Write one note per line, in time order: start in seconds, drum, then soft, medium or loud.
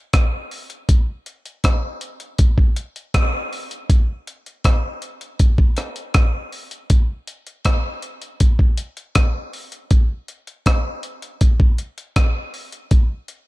0.13 kick loud
0.13 cross-stick loud
0.13 closed hi-hat medium
0.51 open hi-hat medium
0.70 closed hi-hat medium
0.89 kick loud
0.89 closed hi-hat loud
1.26 closed hi-hat medium
1.46 closed hi-hat soft
1.64 kick medium
1.64 cross-stick loud
1.64 closed hi-hat medium
2.01 closed hi-hat medium
2.20 closed hi-hat medium
2.38 kick loud
2.38 closed hi-hat loud
2.58 kick medium
2.76 closed hi-hat medium
2.96 closed hi-hat medium
3.14 kick loud
3.14 cross-stick loud
3.14 closed hi-hat medium
3.53 open hi-hat medium
3.71 closed hi-hat medium
3.90 kick loud
3.90 closed hi-hat medium
4.27 closed hi-hat medium
4.46 closed hi-hat soft
4.64 kick loud
4.64 cross-stick loud
4.64 closed hi-hat medium
5.02 closed hi-hat medium
5.21 closed hi-hat medium
5.39 kick loud
5.39 closed hi-hat medium
5.58 kick medium
5.77 cross-stick medium
5.77 closed hi-hat medium
5.96 closed hi-hat medium
6.14 kick loud
6.14 cross-stick loud
6.14 closed hi-hat medium
6.52 open hi-hat medium
6.71 closed hi-hat medium
6.90 kick loud
6.90 closed hi-hat loud
7.27 closed hi-hat medium
7.47 closed hi-hat medium
7.65 kick loud
7.65 cross-stick loud
7.65 closed hi-hat medium
8.02 closed hi-hat medium
8.22 closed hi-hat medium
8.40 kick loud
8.40 closed hi-hat loud
8.59 kick medium
8.77 closed hi-hat medium
8.97 closed hi-hat medium
9.15 kick loud
9.15 cross-stick loud
9.15 closed hi-hat loud
9.53 open hi-hat medium
9.72 closed hi-hat medium
9.91 kick loud
9.91 closed hi-hat medium
10.28 closed hi-hat medium
10.47 closed hi-hat soft
10.66 kick loud
10.66 cross-stick loud
10.66 closed hi-hat medium
11.03 closed hi-hat medium
11.22 closed hi-hat medium
11.41 kick loud
11.41 closed hi-hat medium
11.60 kick loud
11.78 closed hi-hat medium
11.98 closed hi-hat medium
12.16 kick loud
12.16 cross-stick loud
12.16 closed hi-hat medium
12.54 open hi-hat medium
12.72 closed hi-hat medium
12.91 kick loud
12.91 closed hi-hat medium
13.28 closed hi-hat medium